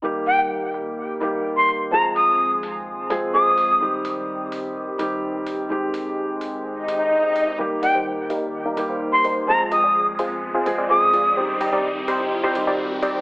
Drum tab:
HH |-o-o-o-o|-o-o-o-o|-o-o-o-o|-o-o-o-o|

HH |-o-o-o-o|-o-o-o-o|-o-o-o-o|